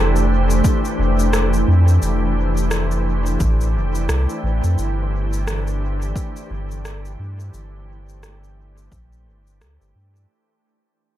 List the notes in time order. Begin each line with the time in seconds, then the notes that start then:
Already playing: F1 E3 A3 D4 G4 C5
0.16 shaker
0.50 shaker
0.64 kick, shaker
0.85 shaker
0.98 F1
1.19 shaker
1.33 cross-stick, shaker
1.53 shaker
1.68 F2
1.88 shaker
2.02 F1, shaker
2.57 shaker
2.71 cross-stick, shaker
2.91 shaker
3.26 shaker
3.40 A1, kick, shaker
3.61 shaker
3.75 F1
3.95 shaker
4.09 C2, cross-stick, shaker
4.30 shaker
4.43 A1
4.64 F2, shaker
4.78 G1, shaker
5.33 shaker
5.47 cross-stick, shaker
5.67 shaker
6.02 shaker
6.16 kick, shaker
6.36 shaker
6.50 G1
6.71 shaker
6.85 cross-stick, shaker
7.05 shaker
7.19 G2
7.40 shaker
7.53 G1, shaker
8.09 shaker
8.23 cross-stick, shaker
8.44 shaker
8.78 shaker
8.92 A#1, kick, shaker
9.12 shaker
9.26 G1
9.47 shaker
9.60 D2, cross-stick, shaker
9.81 G1, shaker
9.95 G2
10.16 shaker